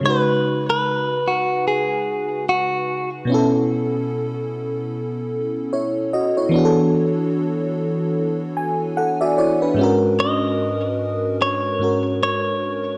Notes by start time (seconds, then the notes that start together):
0.01 C#3 G#3
0.05 D#4 F#4 B4
0.10 B4
0.70 B4
1.28 F#4
1.68 G#4
2.49 F#4
3.25 B2 B3
3.30 C#4 E4
3.34 A4
5.73 E4 C#5
6.13 F#4 D#5
6.37 E4 C#5
6.49 E3 B3
6.54 D4 F#4
6.59 G#4
6.65 A4
8.57 G#5
8.97 A4 F#5
9.21 F#4 D5 E5
9.38 E4 C#5 D5
9.62 D4 B4
9.74 G#2 G#3
9.79 C#4 F#4
9.83 A#4
10.20 D#5
11.42 C#5
11.79 G#2 G#3 C#4 F#4
11.84 A#4
12.23 C#5